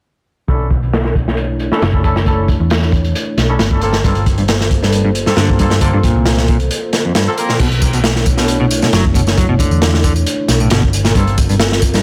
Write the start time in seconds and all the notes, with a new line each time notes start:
0.48 B1 A3 C#4 D4 E4 A4 C#5, kick, closed hi-hat
0.60 closed hi-hat
0.71 kick, closed hi-hat
0.83 closed hi-hat
0.93 snare, closed hi-hat
1.04 snare
1.15 kick, closed hi-hat
1.28 snare
1.37 closed hi-hat
1.59 closed hi-hat
1.72 C#4 D4 E4 A4, snare
1.82 F#1, snare, closed hi-hat
1.93 C#4 D4 E4 A4, kick
2.04 C#4 D4 E4 A4, kick, closed hi-hat
2.16 snare
2.26 C#4 D4 E4 A4, kick, closed hi-hat
2.48 kick, closed hi-hat
2.60 E2
2.70 snare, closed hi-hat
2.82 snare
2.92 kick, closed hi-hat
3.04 closed hi-hat
3.15 closed hi-hat
3.37 B1, snare, closed hi-hat
3.49 C#4 D4 E4 A4
3.59 G1, snare, closed hi-hat
3.71 C#4 D4 E4 A4, kick
3.81 A#3 C4 F4 A4 C5, closed hi-hat
3.93 snare
4.04 G1 G2 A#3 C4 F4 A4, kick, closed hi-hat
4.15 closed hi-hat
4.26 kick, closed hi-hat
4.38 G2, closed hi-hat
4.48 snare, closed hi-hat
4.61 snare
4.71 kick, closed hi-hat
4.83 G2, snare
4.92 closed hi-hat
5.05 G2
5.15 closed hi-hat
5.26 G2 A#3 C4 F4 A4, muted picked electric bass stroke, snare
5.37 G2 D3, snare, closed hi-hat
5.49 A#3 C4 F4 A4, kick
5.59 G2 A#3 C4 F4 A4, kick, closed hi-hat
5.70 snare
5.81 D3 A#3 C4 F4 A4, kick, closed hi-hat
5.93 G2
6.03 A#2, kick, closed hi-hat
6.16 C2
6.26 snare, closed hi-hat
6.37 snare
6.48 A#2, kick, closed hi-hat
6.60 closed hi-hat
6.71 closed hi-hat
6.93 snare, closed hi-hat
7.05 F2
7.15 G2, snare, closed hi-hat
7.27 A#3 C4 F4 A4
7.38 A#3 C4 F4 A#4, closed hi-hat
7.49 A#2, snare
7.59 B1 B2 A3 D4 E4 C#5, kick, closed hi-hat, crash, tambourine
7.72 closed hi-hat
7.82 kick, closed hi-hat, tambourine
7.93 B2, closed hi-hat, tambourine
8.04 snare, closed hi-hat
8.16 snare
8.26 kick, closed hi-hat, tambourine
8.37 B2, snare, tambourine
8.48 closed hi-hat, tambourine
8.60 B2
8.71 closed hi-hat, tambourine
8.82 B2, snare, tambourine
8.93 F#1 F#3, snare, closed hi-hat, tambourine
9.05 kick
9.14 B2, kick, closed hi-hat, tambourine
9.27 snare, tambourine
9.37 F#3, kick, closed hi-hat, tambourine
9.49 B2
9.59 D3, kick, closed hi-hat, tambourine
9.71 E2, tambourine
9.82 snare, closed hi-hat, tambourine
9.94 snare
10.04 D3, kick, closed hi-hat, tambourine
10.16 closed hi-hat, tambourine
10.26 closed hi-hat, tambourine
10.48 B1, snare, closed hi-hat, tambourine
10.60 A2, tambourine
10.70 G1 B2, snare, closed hi-hat, tambourine
10.83 kick
10.93 C4 F4 A4 A#4, closed hi-hat, tambourine
11.05 A#2, snare, tambourine
11.15 G1 G2 A#3 C4 F4 A4, kick, closed hi-hat, tambourine
11.27 closed hi-hat
11.38 kick, closed hi-hat, tambourine
11.49 G2, closed hi-hat, tambourine
11.60 snare, closed hi-hat, tambourine
11.72 snare
11.82 kick, closed hi-hat, tambourine
11.94 G2, snare, tambourine